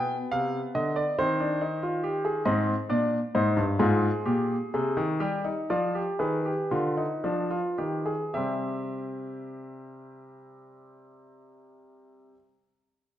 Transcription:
0.00 0.15 B2 medium
0.00 1.14 B3 medium
0.00 0.16 G5 loud
0.32 0.58 C3 medium
0.32 0.58 F5 loud
0.75 1.01 D3 medium
0.75 0.96 D#5 loud
0.96 1.17 D5 medium
1.19 2.42 D#3 medium
1.19 1.39 C4 medium
1.19 2.42 C5 loud
1.40 1.60 D4 medium
1.61 1.81 D#4 medium
1.83 2.03 F4 medium
2.03 2.24 G4 medium
2.25 2.45 G#4 medium
2.45 2.73 G#2 loud
2.45 2.73 C4 medium
2.45 2.73 D#5 loud
2.89 3.17 A#2 medium
2.89 3.17 D4 medium
2.89 3.17 D5 medium
3.35 3.56 G#2 loud
3.35 3.63 D#4 medium
3.35 3.63 C5 medium
3.57 3.79 G2 medium
3.79 4.08 G#2 loud
3.79 4.08 F4 medium
3.79 4.72 G#4 medium
4.25 4.54 A#2 medium
4.25 4.54 G4 medium
4.74 4.96 C3 medium
4.74 5.03 G#4 medium
4.97 5.20 D#3 loud
5.20 5.51 G3 medium
5.20 5.44 G4 medium
5.44 5.68 D#4 medium
5.70 6.01 F3 medium
5.70 5.94 F4 medium
5.70 6.01 D5 medium
5.95 6.19 G4 medium
6.19 6.51 D#3 medium
6.19 6.44 G#4 medium
6.19 8.31 B4 medium
6.45 6.70 G4 medium
6.71 7.04 D3 medium
6.71 6.96 F4 medium
6.97 7.23 D#4 medium
7.24 7.58 F3 medium
7.24 7.50 D4 medium
7.50 7.77 F4 medium
7.78 8.13 D#3 medium
7.78 8.05 G4 medium
8.06 8.34 G#4 medium
8.34 12.32 C3 medium
8.34 12.35 G3 medium
8.34 12.35 C4 medium
8.34 12.32 G4 medium
8.34 12.32 E5 medium

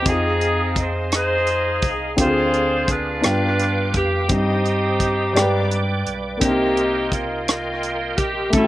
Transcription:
0.00 2.12 C4 soft
0.00 2.14 D#5 soft
0.05 1.78 F2 medium
0.05 1.08 C4 medium
0.05 2.13 D#4 soft
0.05 1.08 D#4 medium
0.05 2.15 F4 soft
0.05 3.22 G#4 soft
0.05 0.78 G#4 medium
0.05 4.27 F5 soft
0.05 kick medium
0.05 closed hi-hat medium
0.10 2.16 G#4 medium
0.41 closed hi-hat soft
0.76 kick medium
0.76 closed hi-hat soft
0.81 1.14 C5 medium
1.12 2.15 D#4 medium
1.12 2.15 G#4 medium
1.12 cross-stick medium
1.12 closed hi-hat medium
1.17 1.90 C5 medium
1.47 closed hi-hat soft
1.82 2.15 C2 medium
1.82 kick medium
1.82 closed hi-hat soft
2.16 3.20 D2 medium
2.16 3.20 D3 soft
2.16 3.23 C4 medium
2.16 3.20 D4 soft
2.16 3.22 F4 soft
2.16 2.89 F4 medium
2.16 2.25 G4 soft
2.16 3.21 G#4 medium
2.16 3.23 D5 soft
2.16 kick medium
2.16 closed hi-hat medium
2.21 2.86 C5 medium
2.26 3.28 G#4 medium
2.54 closed hi-hat soft
2.88 3.92 D4 medium
2.88 3.91 F4 medium
2.88 kick medium
2.88 closed hi-hat soft
2.92 3.96 B4 medium
3.21 4.25 G2 soft
3.21 4.28 B3 medium
3.21 4.29 D4 soft
3.21 4.30 F4 soft
3.21 4.30 G4 medium
3.21 4.29 B4 medium
3.21 8.67 G5 soft
3.21 4.29 D6 medium
3.21 cross-stick medium
3.21 closed hi-hat medium
3.25 3.91 G2 medium
3.59 closed hi-hat soft
3.94 4.27 F2 medium
3.94 4.31 G4 medium
3.94 kick medium
3.94 closed hi-hat soft
4.28 5.32 G2 medium
4.28 5.32 G2 soft
4.28 5.32 G3 medium
4.28 5.35 C4 soft
4.28 6.03 C4 medium
4.28 4.37 D4 soft
4.28 6.03 D#4 medium
4.28 5.35 G4 medium
4.28 5.34 C5 medium
4.28 5.34 D#5 soft
4.28 5.34 D#6 medium
4.28 kick medium
4.28 closed hi-hat medium
4.32 6.04 G4 medium
4.37 5.39 D#4 soft
4.65 closed hi-hat soft
5.00 kick medium
5.00 closed hi-hat soft
5.33 6.02 G2 medium
5.33 6.37 G2 medium
5.33 6.40 G3 medium
5.33 5.42 G#3 soft
5.33 6.42 G4 medium
5.33 6.40 B4 medium
5.33 6.40 D5 soft
5.33 6.42 D5 medium
5.33 6.40 D6 medium
5.33 cross-stick medium
5.33 closed hi-hat medium
5.41 6.44 B4 medium
5.71 closed hi-hat soft
6.06 6.39 B1 medium
6.06 closed hi-hat soft
6.37 7.43 C3 medium
6.37 8.47 A#3 soft
6.37 8.49 C4 soft
6.37 closed hi-hat medium
6.41 8.14 C2 medium
6.41 7.13 A#3 medium
6.41 6.48 D4 soft
6.41 7.44 D#4 medium
6.41 7.08 G4 medium
6.41 8.51 G4 medium
6.41 8.51 A#4 soft
6.41 8.51 D#5 soft
6.41 8.51 C6 medium
6.41 kick medium
6.48 8.53 D#4 soft
6.77 closed hi-hat soft
7.12 8.15 A#3 medium
7.12 8.18 F4 medium
7.12 kick medium
7.12 closed hi-hat soft
7.48 cross-stick medium
7.48 closed hi-hat medium
7.83 closed hi-hat soft
8.17 8.51 A#1 medium
8.17 8.53 G4 medium
8.17 kick medium
8.17 closed hi-hat soft
8.50 8.67 A1 medium
8.50 8.67 A2 medium
8.50 8.67 A3 medium
8.50 8.67 C#4 soft
8.50 kick medium
8.50 closed hi-hat medium
8.54 8.67 C#4 medium
8.54 8.67 E4 soft
8.54 8.67 E4 medium
8.54 8.62 F#4 soft
8.54 8.67 A4 medium
8.54 8.67 E5 soft
8.54 8.67 C#6 medium
8.64 8.67 G4 medium

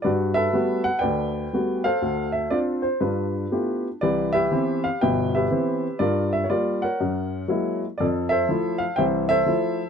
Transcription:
0.02 0.47 G2 medium
0.02 0.53 F#4 medium
0.02 0.34 B4 medium
0.02 0.10 D5 medium
0.34 1.31 A4 medium
0.34 1.00 B4 medium
0.34 0.81 E5 loud
0.53 0.87 G3 medium
0.53 0.88 A3 soft
0.53 0.88 B3 soft
0.53 0.88 F#4 medium
0.84 1.00 F#5 medium
0.99 1.97 B4 medium
0.99 1.97 D5 medium
0.99 1.85 G5 medium
1.03 1.45 D2 medium
1.53 1.87 G3 soft
1.53 1.87 A3 soft
1.53 1.87 B3 soft
1.53 1.87 F#4 soft
1.84 2.81 A4 medium
1.84 2.80 C5 medium
1.84 2.30 F5 medium
2.02 2.45 D2 medium
2.32 2.51 E5 medium
2.50 2.86 C4 soft
2.50 2.86 D4 soft
2.50 2.86 F4 medium
2.50 2.58 D5 medium
2.82 3.01 C5 medium
3.01 3.44 G2 medium
3.01 3.98 D4 soft
3.01 3.51 F4 soft
3.01 3.81 B4 medium
3.52 3.87 A3 soft
3.52 3.87 B3 soft
3.52 3.87 E4 soft
3.52 3.87 F4 soft
3.52 3.87 G4 soft
4.01 4.46 C2 medium
4.01 4.46 E3 medium
4.01 4.33 G4 soft
4.01 4.33 B4 medium
4.01 4.36 D5 medium
4.33 5.31 G4 medium
4.33 5.01 B4 medium
4.33 4.86 E5 medium
4.51 4.87 E3 medium
4.51 4.87 B3 soft
4.51 4.87 C4 medium
4.84 5.02 F5 medium
5.01 5.46 G1 medium
5.01 5.45 B2 medium
5.01 5.35 B4 medium
5.01 5.33 E5 medium
5.01 5.32 G5 medium
5.35 5.97 G4 medium
5.35 5.98 B4 medium
5.35 6.03 E5 medium
5.51 5.86 E3 soft
5.51 5.86 B3 soft
5.51 5.86 C4 medium
5.99 6.43 G2 medium
5.99 6.49 F4 medium
5.99 6.82 A#4 medium
5.99 6.30 D5 medium
6.33 6.45 E5 medium
6.44 6.49 C#5 medium
6.50 6.85 G3 medium
6.50 6.85 A#3 soft
6.50 6.85 F4 medium
6.50 6.84 D5 medium
6.82 7.79 A#4 medium
6.82 7.79 C#5 medium
6.82 7.78 F#5 medium
7.00 7.43 F#2 medium
7.48 7.83 F#3 soft
7.48 7.84 G#3 soft
7.48 7.84 A#3 soft
7.48 7.84 E4 medium
7.98 8.42 F2 medium
7.98 8.29 A4 medium
7.98 8.05 D5 medium
8.29 9.26 A4 medium
8.29 8.96 C5 medium
8.29 8.81 E5 loud
8.49 8.83 F3 medium
8.49 8.83 A3 medium
8.49 8.83 E4 medium
8.78 8.97 F5 medium
8.96 9.41 C2 medium
8.96 9.40 E3 medium
8.96 9.29 C5 medium
8.96 9.27 E5 medium
8.96 9.04 G5 medium
9.29 9.89 A4 medium
9.29 9.89 C5 medium
9.29 9.89 E5 loud
9.46 9.80 F3 medium
9.46 9.81 A3 soft
9.46 9.81 E4 medium

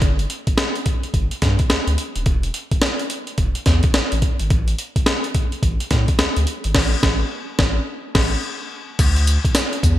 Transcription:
0.02 0.26 G1 loud
0.02 kick loud
0.02 closed hi-hat medium
0.19 closed hi-hat medium
0.30 closed hi-hat medium
0.47 0.52 G1 soft
0.47 kick medium
0.47 closed hi-hat medium
0.58 snare loud
0.58 closed hi-hat medium
0.76 closed hi-hat soft
0.86 kick medium
0.86 closed hi-hat medium
1.03 closed hi-hat soft
1.14 1.29 G1 medium
1.14 kick medium
1.14 closed hi-hat medium
1.31 closed hi-hat medium
1.42 1.57 G2 medium
1.42 kick medium
1.42 snare medium
1.42 closed hi-hat medium
1.59 kick loud
1.59 closed hi-hat medium
1.70 1.77 D2 soft
1.70 snare loud
1.70 closed hi-hat medium
1.87 1.96 D2 medium
1.87 closed hi-hat medium
1.98 closed hi-hat medium
2.16 2.25 D#1 medium
2.16 closed hi-hat medium
2.26 2.50 E1 loud
2.26 kick loud
2.26 closed hi-hat medium
2.43 closed hi-hat medium
2.54 closed hi-hat medium
2.71 2.76 E1 soft
2.71 kick medium
2.71 closed hi-hat medium
2.82 snare loud
2.82 closed hi-hat medium
2.99 closed hi-hat medium
3.10 closed hi-hat medium
3.27 closed hi-hat soft
3.38 3.53 E1 loud
3.38 kick medium
3.38 closed hi-hat medium
3.55 closed hi-hat medium
3.66 3.81 E2 loud
3.66 kick loud
3.66 snare medium
3.66 closed hi-hat medium
3.83 kick loud
3.83 closed hi-hat medium
3.94 4.02 A1 soft
3.94 snare loud
3.94 closed hi-hat medium
4.12 4.21 A1 loud
4.12 closed hi-hat medium
4.22 kick loud
4.22 closed hi-hat medium
4.39 4.49 G#1 medium
4.39 closed hi-hat medium
4.50 4.74 A1 loud
4.50 kick loud
4.50 closed hi-hat medium
4.68 closed hi-hat medium
4.79 closed hi-hat medium
4.96 5.00 A1 soft
4.96 kick medium
4.96 closed hi-hat medium
5.06 snare loud
5.06 closed hi-hat medium
5.24 closed hi-hat medium
5.35 kick medium
5.35 closed hi-hat medium
5.52 closed hi-hat soft
5.63 5.78 A1 medium
5.63 kick loud
5.63 closed hi-hat medium
5.80 closed hi-hat medium
5.91 6.06 A2 medium
5.91 kick loud
5.91 snare medium
5.91 closed hi-hat medium
6.08 kick loud
6.08 closed hi-hat medium
6.19 6.26 D2 soft
6.19 snare loud
6.19 closed hi-hat medium
6.37 6.46 D2 loud
6.37 closed hi-hat medium
6.47 closed hi-hat medium
6.64 6.74 G#1 medium
6.64 closed hi-hat medium
6.75 6.95 A1 loud
6.75 kick loud
6.75 snare loud
6.75 crash medium
7.03 7.23 A1 medium
7.03 kick loud
7.03 snare loud
7.59 7.79 A1 loud
7.59 kick loud
7.59 snare loud
8.15 8.35 A1 loud
8.15 kick loud
8.15 snare loud
8.15 crash medium
8.99 9.38 D2 loud
8.99 kick loud
8.99 closed hi-hat medium
8.99 crash medium
8.99 tambourine medium
9.16 closed hi-hat medium
9.27 closed hi-hat medium
9.27 tambourine medium
9.45 kick medium
9.45 closed hi-hat medium
9.55 snare loud
9.55 closed hi-hat medium
9.55 tambourine loud
9.73 closed hi-hat medium
9.83 9.99 E2 medium
9.83 kick medium
9.83 closed hi-hat medium
9.83 tambourine medium

